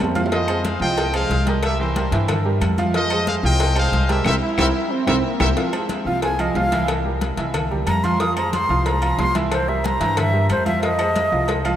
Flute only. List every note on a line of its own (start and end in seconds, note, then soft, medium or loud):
6.07 6.23 F5 medium
6.23 6.42 G#5 loud
6.40 6.58 D#5 medium
6.57 6.88 F5 loud
7.88 8.05 A#5 loud
8.04 8.22 C6 loud
8.20 8.36 D#6 loud
8.37 8.53 A#5 medium
8.54 8.88 C6 loud
8.87 9.21 A#5 loud
9.19 9.35 C6 loud
9.52 9.70 C5 loud
9.69 9.87 E5 medium
9.86 10.20 A#5 loud
10.18 10.50 E5 loud
10.51 10.66 C5 loud
10.67 10.83 E5 loud
10.84 11.76 D#5 loud